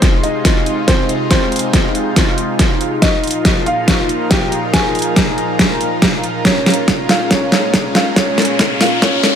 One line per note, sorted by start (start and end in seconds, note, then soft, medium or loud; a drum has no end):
0.00 2.99 C3 medium
0.00 2.99 G#3 medium
0.00 0.16 C4 medium
0.00 0.97 C4 medium
0.00 2.99 D#4 medium
0.00 7.50 D#4 medium
0.00 2.99 F4 medium
0.00 4.40 G#4 medium
0.00 0.16 C5 medium
0.00 0.97 D#5 medium
0.00 4.20 C6 medium
0.00 kick medium
0.00 snare soft
0.00 closed hi-hat medium
0.15 9.35 F5 medium
0.23 0.80 D#4 medium
0.23 0.80 D#5 medium
0.23 closed hi-hat medium
0.45 kick medium
0.45 snare soft
0.45 closed hi-hat medium
0.66 closed hi-hat medium
0.88 1.12 C4 medium
0.88 1.12 C5 medium
0.88 kick medium
0.88 snare soft
0.88 closed hi-hat medium
1.09 closed hi-hat medium
1.31 2.94 C4 medium
1.31 2.94 C5 medium
1.31 kick medium
1.31 snare medium
1.31 closed hi-hat medium
1.52 closed hi-hat soft
1.56 closed hi-hat medium
1.59 closed hi-hat medium
1.73 kick medium
1.73 snare medium
1.73 closed hi-hat medium
1.95 closed hi-hat medium
2.16 kick loud
2.16 snare medium
2.16 closed hi-hat medium
2.38 closed hi-hat medium
2.59 kick medium
2.59 snare medium
2.59 closed hi-hat medium
2.81 closed hi-hat medium
3.02 6.42 A#2 medium
3.02 6.42 F3 medium
3.02 3.59 D#4 medium
3.02 6.42 D#4 medium
3.02 9.35 F4 medium
3.02 3.59 D#5 medium
3.02 kick loud
3.02 snare medium
3.02 closed hi-hat medium
3.24 7.83 A#4 medium
3.24 closed hi-hat soft
3.27 closed hi-hat medium
3.31 closed hi-hat medium
3.45 kick medium
3.45 snare medium
3.45 closed hi-hat medium
3.66 4.23 F4 medium
3.66 4.23 F5 medium
3.66 closed hi-hat soft
3.78 9.35 A#5 medium
3.88 kick loud
3.88 snare medium
3.88 closed hi-hat medium
4.09 closed hi-hat soft
4.31 4.54 G4 medium
4.31 4.54 G5 medium
4.31 kick loud
4.31 snare medium
4.31 closed hi-hat medium
4.52 closed hi-hat medium
4.74 6.37 G#4 medium
4.74 6.37 G#5 medium
4.74 kick loud
4.74 snare medium
4.74 closed hi-hat medium
4.95 closed hi-hat soft
4.99 closed hi-hat medium
5.02 closed hi-hat medium
5.16 kick loud
5.16 snare medium
5.16 closed hi-hat medium
5.38 closed hi-hat soft
5.59 kick loud
5.59 snare medium
5.59 closed hi-hat medium
5.81 closed hi-hat medium
6.02 kick loud
6.02 snare medium
6.02 closed hi-hat medium
6.24 closed hi-hat medium
6.45 9.35 A#2 medium
6.45 9.35 G#3 medium
6.45 9.35 C#4 medium
6.45 7.01 C#4 medium
6.45 7.01 C#5 medium
6.45 kick loud
6.45 snare medium
6.45 closed hi-hat medium
6.45 riser medium
6.66 snare medium
6.66 closed hi-hat soft
6.70 closed hi-hat medium
6.74 9.35 G#4 medium
6.74 closed hi-hat medium
6.88 kick medium
6.88 snare medium
6.88 closed hi-hat medium
7.09 7.29 F4 medium
7.09 7.29 F5 medium
7.09 snare medium
7.09 open hi-hat medium
7.31 7.87 C#4 medium
7.31 7.87 C#5 medium
7.31 kick loud
7.31 snare medium
7.31 closed hi-hat medium
7.52 snare medium
7.52 closed hi-hat medium
7.74 kick loud
7.74 snare medium
7.74 closed hi-hat medium
7.95 8.15 F4 medium
7.95 8.15 F5 medium
7.95 snare medium
7.95 closed hi-hat soft
8.16 8.73 C#4 medium
8.16 8.73 C#5 medium
8.16 kick loud
8.16 snare medium
8.16 closed hi-hat medium
8.38 snare medium
8.38 closed hi-hat soft
8.42 closed hi-hat medium
8.45 closed hi-hat medium
8.59 kick loud
8.59 snare medium
8.59 closed hi-hat medium
8.81 9.01 F4 medium
8.81 9.01 F5 medium
8.81 snare medium
8.81 open hi-hat loud
9.02 9.35 C#4 medium
9.02 9.35 C#5 medium
9.02 kick loud
9.02 snare medium
9.02 closed hi-hat medium
9.24 snare medium
9.24 closed hi-hat medium